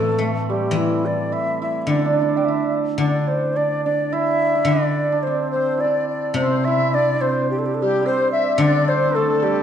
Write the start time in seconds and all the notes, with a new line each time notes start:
Already playing: A2 E3 C4 D4 A4
0.02 A3
0.09 A3
0.18 A3
0.49 G3 G4
0.71 E3
0.76 E3 E4
1.06 D5
1.32 E4 E5
1.62 E4 E5
1.82 E5
1.87 D3 D4 D5
1.98 D4
2.06 D4
2.13 D4
2.17 D5
2.22 D4
2.29 D4
2.37 D4 G5
2.45 E4 E5
2.98 D3 D4
3.02 D5
3.28 C5
3.56 D4 D5
3.84 D4 D5
4.12 E4 E5
4.55 E4
4.65 D3 D5
4.71 D4
5.12 D4
5.23 C5
5.27 C4
5.51 C5
5.56 C4
5.78 E4 D5
5.84 D4
6.09 D5
6.34 C3 C5
6.41 C4
6.65 E4 E5
6.93 D4 D5
7.14 D4
7.21 C4 C5
7.50 G4
7.59 A4
7.66 G4
7.75 A4
7.82 G3 G4
8.01 D4
8.06 C4 C5
8.32 E5
8.54 E5
8.58 D3 D4 D5
8.62 D5
8.88 C4 C5
9.15 A3 A4
9.42 G3 G4